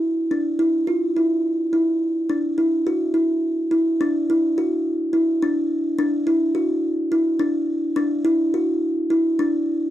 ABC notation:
X:1
M:7/8
L:1/8
Q:1/4=106
K:D
V:1 name="Kalimba"
z D E =F E2 E | z D E F E2 E | D E F2 E D2 | D E F2 E D2 |
D E F2 E D2 |]